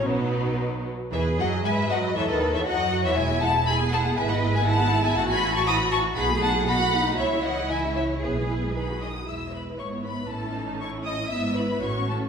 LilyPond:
<<
  \new Staff \with { instrumentName = "Violin section" } { \time 2/4 \key e \major \tempo 4 = 118 b'4. r8 | e''8 fis''8 gis''8 fis''8 | e''16 dis''8 e''16 fis''8. e''16 | gis''8 a''8 b''8 a''8 |
gis''16 fis''8 gis''16 a''8. gis''16 | a''16 b''8 cis'''16 dis'''8 cis'''8 | b''8 a''8 b''4 | e''8 fis''8 gis''8 e''8 |
b'4 b''8 dis'''8 | e'''8 b''8 cis'''8 b''8 | a''4 cis'''8 dis'''8 | e'''8 b''8 cis'''8 a''8 | }
  \new Staff \with { instrumentName = "Violin section" } { \time 2/4 \key e \major b4. r8 | b'8 dis''8 e''8 dis''8 | cis''16 b'8 cis''16 dis''8. cis''16 | e''8 fis''8 gis''8 fis''8 |
e''16 dis''8 e''16 fis''8. e''16 | fis''16 gis''8 a''16 b''8 a''8 | fis''8 fis''8 fis''4 | cis''8 dis''8 e''8 cis''8 |
gis'4 b'8 dis''8 | e''8 b'8 cis''8 b'8 | a'4 cis''8 dis''8 | e''8 b'8 cis''8 a'8 | }
  \new Staff \with { instrumentName = "Cello section" } { \time 2/4 \key e \major b,4. r8 | gis'4 b'4 | a'4 fis'4 | e'4 gis'4 |
b'4 e'4 | fis'4 fis'4 | gis'4 fis'8 dis'8 | e'2 |
gis'4. r8 | e,4 gis,4 | a,2 | gis,4 a,4 | }
  \new Staff \with { instrumentName = "Viola section" } { \time 2/4 \key e \major << { dis'4. r8 | e8 fis8 gis8 fis8 | e16 dis8 e16 fis8. e16 | e'16 gis'16 e'16 gis'16 e'16 gis'16 e'16 gis'16 |
e'16 gis'16 e'16 gis'16 e'16 gis'16 e'16 gis'16 | e'16 fis'16 e'16 fis'16 e'16 fis'16 e'16 fis'16 | dis'16 fis'16 dis'16 fis'16 dis'16 fis'16 dis'16 fis'16 | e'16 cis'16 e'16 cis'16 e'16 cis'16 e'16 cis'16 |
e'16 gis'16 e'16 gis'16 dis'16 fis'16 dis'16 fis'16 | e'2 | e'8 dis'8 cis'4 | e'4 fis'4 | } \\ { fis4. r8 | r2 | r2 | gis16 b16 gis16 b16 gis16 b16 gis16 b16 |
gis16 b16 gis16 b16 gis16 b16 gis16 b16 | e16 fis16 e16 fis16 e16 fis16 e16 fis16 | b16 a16 b16 a16 b16 a16 b16 a16 | e16 gis16 e16 gis16 e16 gis16 e16 gis16 |
b16 gis16 b16 gis16 dis16 fis16 dis16 fis16 | gis4 b4 | cis'4 e'4 | b4 cis'4 | } >> }
  \new Staff \with { instrumentName = "Double bass section" } { \clef bass \time 2/4 \key e \major b,,4. r8 | e,8 fis,8 gis,8 fis,8 | e,16 dis,8 e,16 fis,8. e,16 | e,,2 |
gis,,2 | a,,2 | b,,2 | cis,2 |
b,,4. r8 | e,,4 gis,,4 | a,,2 | gis,,4 a,,4 | }
>>